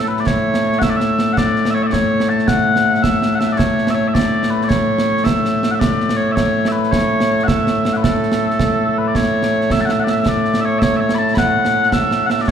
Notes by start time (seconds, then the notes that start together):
Already playing: A2 A3
0.08 B4
0.17 D5, snare
0.27 C#5, concert bass drum, snare
0.54 snare
0.72 snare
0.79 E5 F#5, concert bass drum, snare
0.90 D5
0.96 E5, snare
1.19 snare
1.33 F#5
1.37 D5, concert bass drum, snare
1.56 snare
1.65 snare
1.70 C#5 E5
1.83 D5 E5
1.93 C#5, concert bass drum, snare
2.20 snare
2.29 A5
2.39 snare
2.48 F#5, concert bass drum, snare
2.76 snare
2.94 snare
3.03 E5, concert bass drum, snare
3.22 snare
3.35 F#5
3.39 E5, snare
3.52 D5
3.58 C#5, concert bass drum, snare
3.78 snare
3.87 E5, snare
3.95 C#5
4.08 E5
4.14 D5, concert bass drum, snare
4.43 snare
4.50 B4
4.61 D5, snare
4.69 C#5, concert bass drum, snare
4.99 snare
5.17 snare
5.24 E5, concert bass drum, snare
5.45 snare
5.63 snare
5.71 E5 F#5
5.79 D5, concert bass drum, snare
6.00 snare
6.09 snare
6.17 C#5
6.32 C#5 E5
6.37 concert bass drum, snare
6.65 E5, snare
6.72 B4
6.83 snare
6.91 C#5, concert bass drum, snare
7.20 snare
7.39 snare
7.43 E5 F#5
7.48 concert bass drum, snare
7.67 snare
7.85 snare
7.93 B4 F#5
8.03 A4, concert bass drum, snare
8.23 snare
8.32 snare
8.50 snare
8.60 concert bass drum, snare
8.98 B4
9.08 D5
9.15 C#5, concert bass drum, snare
9.43 snare
9.61 snare
9.70 E5, concert bass drum, snare
9.81 A5
9.85 F#5, snare
9.91 E5
10.00 F#5
10.04 D5, snare
10.09 E5
10.20 E5
10.26 D5, concert bass drum, snare
10.45 snare
10.54 snare
10.60 E5
10.65 C#5
10.79 C#5 E5, concert bass drum, snare
10.96 C#5 E5
11.09 snare
11.15 A5 B5
11.28 snare
11.35 F#5 B5, concert bass drum, snare
11.65 snare
11.83 snare
11.92 E5, concert bass drum, snare
12.11 snare
12.26 E5 F#5, snare
12.41 D5
12.48 concert bass drum, snare